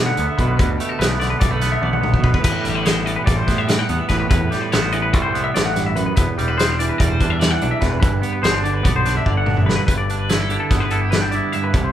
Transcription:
Already playing: B2 A3 B3
0.00 D3
0.06 F#5
0.17 D2 B3, closed hi-hat
0.27 E5
0.38 B1 B2 B4, kick, closed hi-hat
0.47 B4
0.57 D2 B2 B4, kick, closed hi-hat
0.78 A3 G4, closed hi-hat
0.89 A4
0.99 B1 B3 B4, snare, closed hi-hat
1.20 D3 D5, snare, closed hi-hat
1.30 B4
1.39 B1 G3 D5, kick, snare, closed hi-hat
1.51 A3 B4
1.61 B3, snare, closed hi-hat
1.72 E5
1.81 B1 D3 D5, high tom
1.93 F#5, high tom
2.01 B3, mid tom
2.13 E5, kick
2.20 B2 B4, kick
2.34 B4, kick
2.42 A1 A2 B4, kick, closed hi-hat, crash
2.61 G3 G4, closed hi-hat
2.66 A1, snare
2.75 B4
2.83 B3 C5, snare, closed hi-hat
3.05 E3 D5, closed hi-hat
3.16 B4
3.24 A1 G3 D5, kick, closed hi-hat
3.28 snare
3.36 C5
3.47 A2 B3, kick, snare, closed hi-hat
3.58 E5
3.67 E3 D5, snare, closed hi-hat
3.79 F#5
3.89 E2 B3, closed hi-hat
3.99 E5
4.09 A1 A2 B4, kick, snare, closed hi-hat
4.20 B4
4.29 E2 A2 B4, kick, closed hi-hat
4.51 G3 G4, snare, closed hi-hat
4.61 B4
4.72 A1 B3 C5, snare, closed hi-hat
4.92 E3 D5, closed hi-hat
5.02 B4
5.13 C2 G3 D5, kick, closed hi-hat
5.22 C5
5.34 B3, closed hi-hat
5.44 E5
5.54 A1 A2 D5, snare, closed hi-hat
5.65 F#5
5.76 G2, snare, closed hi-hat
5.86 E5
5.96 F#2 B4, closed hi-hat
6.06 B4
6.16 E1 E2 B4, kick, closed hi-hat
6.38 E1 G3 G4, closed hi-hat
6.48 B4
6.57 B3 C5, snare, closed hi-hat
6.71 D4
6.79 E3 D5, closed hi-hat
6.89 B4
6.98 E1 G3 D5, kick, closed hi-hat
7.09 C5
7.21 E2 D4, kick, closed hi-hat
7.30 E5
7.39 E3 D5, snare, closed hi-hat
7.51 F#5
7.61 B1 D4, closed hi-hat
7.71 E5
7.81 E1 E2 B4, kick, snare, closed hi-hat
7.90 B4
8.00 G1 G2 B4, kick, closed hi-hat
8.21 B3 G4, closed hi-hat
8.32 B4
8.42 G1 B3 C5, snare, closed hi-hat
8.54 D4
8.63 D3 D5, closed hi-hat
8.74 B4
8.83 B1 B3 D5, kick, closed hi-hat
8.96 C5
9.05 D4, snare, closed hi-hat
9.17 E5
9.26 G1 D3 D5, kick
9.37 F#5
9.46 D4, mid tom
9.57 E5, mid tom
9.66 G2 B4, snare
9.76 B4
9.87 G1 G2 B4, kick, closed hi-hat
9.98 D5
10.10 D4, closed hi-hat
10.18 B4
10.29 E4, snare, closed hi-hat
10.38 A4
10.49 D3 D4 G4, closed hi-hat
10.60 A4
10.70 G1 B3, kick, snare, closed hi-hat
10.80 B4
10.90 E4 A4, closed hi-hat
11.01 G4
11.11 G2 D4 B4, snare, closed hi-hat
11.21 G5
11.31 E4 D5, closed hi-hat
11.52 G2 E5, closed hi-hat
11.64 B4
11.74 C2 C3 A4, kick, closed hi-hat
11.84 C5

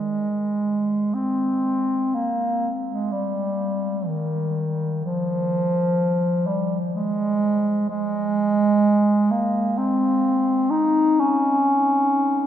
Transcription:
Already playing: G#3
1.14 C4
2.15 A#3
2.89 G#3
3.12 G3
4.07 D#3
5.05 F3
6.47 G3
6.94 G#3
7.89 G#3
9.31 A#3
9.78 C4
10.71 D#4
11.20 C#4

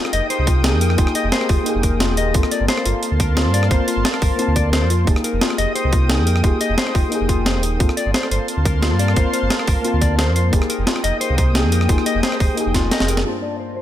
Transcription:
Already playing: A#3 D#4 F4 G4 G#4 G5 D#6
0.05 cross-stick
0.13 F1 D#5, closed hi-hat
0.30 C5, closed hi-hat
0.39 C2
0.47 F4, kick, closed hi-hat
0.63 A#3 D#4 G4 G#4, snare, closed hi-hat
0.73 F2
0.81 A#4, closed hi-hat
0.90 cross-stick
0.95 F1 A#3 D#4 F4 G4, kick, closed hi-hat
1.01 G#4
1.07 cross-stick
1.15 D#5, closed hi-hat
1.24 F1
1.32 C5, snare, closed hi-hat
1.41 cross-stick
1.49 F1 F4, kick, open hi-hat
1.63 A#3 D#4 G4, closed hi-hat
1.69 G#4
1.75 F1
1.83 A#4, kick, closed hi-hat
2.00 F4, snare, closed hi-hat
2.10 D#1
2.17 D#5, closed hi-hat
2.32 G1 A#3 C4 F4 F5 A5 C6, kick, closed hi-hat
2.38 A4
2.43 cross-stick
2.51 D5, closed hi-hat
2.60 G1
2.68 C5, snare, closed hi-hat
2.78 cross-stick
2.85 G1 F4, closed hi-hat
3.03 closed hi-hat
3.12 D2
3.20 A#4, kick, closed hi-hat
3.35 A#3 C4 F4 C5, snare, closed hi-hat
3.46 G2
3.54 D5, closed hi-hat
3.63 cross-stick
3.68 G1 A#3 C4 F4 C5, kick, closed hi-hat
3.74 A#4
3.88 F4, closed hi-hat
3.97 G1
4.05 snare, closed hi-hat
4.14 cross-stick
4.22 G1 A#4, kick, open hi-hat
4.36 A#3 C4 F4, closed hi-hat
4.42 A5
4.48 D2
4.56 D5, kick, closed hi-hat
4.73 C5, snare, closed hi-hat
4.82 F2
4.90 F4 G5 D#6, closed hi-hat
5.05 F1 A#3 D#4 G4, kick, closed hi-hat
5.10 G#4
5.16 cross-stick
5.24 A#4, closed hi-hat
5.33 F1
5.41 F4, snare, closed hi-hat
5.50 cross-stick
5.58 F1 D#5, closed hi-hat
5.75 C5, closed hi-hat
5.85 C2
5.92 F4, kick, closed hi-hat
6.08 A#3 D#4 G4 G#4, snare, closed hi-hat
6.19 F2
6.27 A#4, closed hi-hat
6.36 cross-stick
6.41 F1 A#3 D#4 F4 G4, kick, closed hi-hat
6.47 G#4
6.61 D#5, closed hi-hat
6.70 F1
6.78 C5, snare, closed hi-hat
6.87 cross-stick
6.95 F1 F4, kick, open hi-hat
7.09 A#3 D#4 G4, closed hi-hat
7.15 G#4
7.21 F1
7.29 F4, kick, closed hi-hat
7.46 C5, snare, closed hi-hat
7.55 D#1
7.63 closed hi-hat
7.77 G1 A#3 C4 F4 F5 A5 C6, kick, closed hi-hat
7.81 F4 A4
7.89 cross-stick
7.97 D5, closed hi-hat
8.06 G1
8.14 C5, snare, closed hi-hat
8.23 cross-stick
8.31 G1 C5, closed hi-hat
8.48 closed hi-hat
8.57 D2
8.65 A#4, kick, closed hi-hat
8.81 A#3 C4 F4 C5, snare, closed hi-hat
8.91 G2
8.99 D5, closed hi-hat
9.08 cross-stick
9.14 G1 A#3 C4 F4 C5, kick, closed hi-hat
9.19 A#4
9.33 C5, closed hi-hat
9.43 G1
9.50 snare, closed hi-hat
9.59 cross-stick
9.67 G1 A#4, kick, open hi-hat
9.82 A#3 C4 F4, closed hi-hat
9.88 A5
9.94 D2
10.01 D5, kick, closed hi-hat
10.18 C5, snare, closed hi-hat
10.28 F2
10.36 C5 G5 D#6, closed hi-hat
10.50 F1 A#3 D#4 G4, kick, closed hi-hat
10.56 G#4
10.62 cross-stick
10.70 A#4, closed hi-hat
10.79 F1
10.87 F4, snare, closed hi-hat
10.96 cross-stick
11.04 F1 D#5, closed hi-hat
11.21 C5, closed hi-hat
11.30 C2
11.38 C5, kick, closed hi-hat
11.54 A#3 D#4 G4 G#4, snare, closed hi-hat
11.64 F2
11.72 A#4, closed hi-hat
11.81 cross-stick
11.86 F1 A#3 D#4 F4 G4, kick, closed hi-hat
11.92 G#4
11.98 cross-stick
12.06 D#5, closed hi-hat
12.15 F1
12.23 C5, snare, closed hi-hat
12.32 cross-stick
12.40 F1 C5, kick, open hi-hat
12.55 A#3 D#4 G4, closed hi-hat
12.60 G#4
12.66 F1
12.74 F4, kick, snare, closed hi-hat
12.91 D#5, snare, closed hi-hat
13.00 F1, snare
13.08 A#4, closed hi-hat
13.17 snare
13.23 G2 A#3 D4 F4 C5 G5 A5
13.28 C5 A5
13.42 D5
13.60 C5
13.77 C5

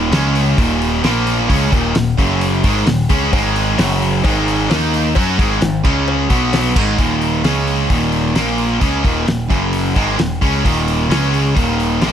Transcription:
Already playing: D#2 A#2 D#3
0.11 C#2 C#3 G#3 C#4, snare, open hi-hat
0.35 open hi-hat
0.58 D#1 D#2 A#2 D#3, kick, open hi-hat
0.82 open hi-hat
1.03 A#1 A#2 F3 A#3, snare, open hi-hat
1.27 open hi-hat
1.49 C#2 C#3 G#3 C#4, kick, open hi-hat
1.72 D#1 D#2 A#2 D#3, kick, open hi-hat
1.95 D#1 D#2 A#2, snare, open hi-hat
2.18 F#1 F#2 C#3 F#3, kick, open hi-hat
2.41 open hi-hat
2.63 G#1 G#2 D#3 G#3, kick, open hi-hat
2.87 D#1 D#2 A#2, snare, open hi-hat
3.09 C#2 C#3 G#3 C#4, kick, open hi-hat
3.33 G#1 G#2 D#3 G#3, kick, open hi-hat, cowbell
3.56 open hi-hat
3.79 F#1 F#2 C#3 F#3, snare, open hi-hat, cowbell
4.02 open hi-hat
4.24 G#2 D#3 G#3, kick, open hi-hat, cowbell
4.48 open hi-hat
4.70 D#2 D#3 A#3 D#4, snare, open hi-hat, cowbell
4.94 open hi-hat
5.15 F#2 F#3 C#4 F#4, kick, open hi-hat, cowbell
5.38 G#1 G#2 D#3 G#3, kick, open hi-hat
5.62 G#1 G#2 D#3, snare, open hi-hat, cowbell
5.85 C#2 C#3 G#3 C#4, kick, crash
6.08 cowbell
6.29 B1 B2 F#3 B3, kick, open hi-hat
6.53 snare, open hi-hat, cowbell
6.76 G#1 G#2 D#3 G#3, kick, crash
6.98 D#2 A#2 D#3, kick, open hi-hat
7.22 open hi-hat
7.44 C#2 C#3 G#3 C#4, snare, open hi-hat
7.68 open hi-hat
7.90 D#1 D#2 A#2 D#3, kick, open hi-hat
8.12 open hi-hat
8.35 A#1 A#2 F3 A#3, snare, open hi-hat
8.58 open hi-hat
8.81 C#2 C#3 G#3 C#4, kick, open hi-hat
9.03 D#1 D#2 A#2 D#3, kick, open hi-hat
9.27 D#1 D#2 A#2, snare, open hi-hat
9.50 F#1 F#2 C#3 F#3, kick, open hi-hat
9.73 open hi-hat
9.95 G#1 G#2 D#3 G#3, kick, open hi-hat
10.18 D#1 D#2 A#2, snare, open hi-hat
10.41 C#2 C#3 G#3 C#4, kick, open hi-hat
10.64 D#1 D#2 A#2 D#3, kick, open hi-hat
10.88 open hi-hat
11.09 C#2 C#3 G#3 C#4, snare, open hi-hat
11.34 open hi-hat
11.55 D#1 D#2 A#2 D#3, kick, open hi-hat
11.80 open hi-hat
12.01 A#1 A#2 F3 A#3, snare, open hi-hat

